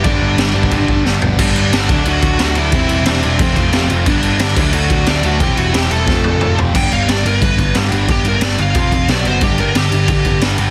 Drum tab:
CC |x---x---x-------|x-x-x-x-x-x-x-x-|x-x-x-x-x-x-x-x-|x-x-x-x-x-x-x-x-|
SD |----o-------o---|----o-------o---|----o-------o---|----o-------o---|
T1 |----------------|----------------|----------------|----------------|
T2 |----------------|----------------|----------------|----------------|
FT |--------------o-|----------------|----------------|----------------|
BD |o------oo-o-----|o-----o---o-----|o-------o-o-----|o-----o---o-----|

CC |x-x-x-x---------|x-x-x-x-x-x-x-x-|x-x-x-x-x-x-x-x-|x-x-x-x-x-x-x-x-|
SD |----o---o-------|----o-------o---|----o-------o---|----o-------o---|
T1 |----------o-----|----------------|----------------|----------------|
T2 |------------o---|----------------|----------------|----------------|
FT |--------------o-|----------------|----------------|----------------|
BD |o-------o-------|o-------o-o-----|o-------o-o-----|o-------o-o-----|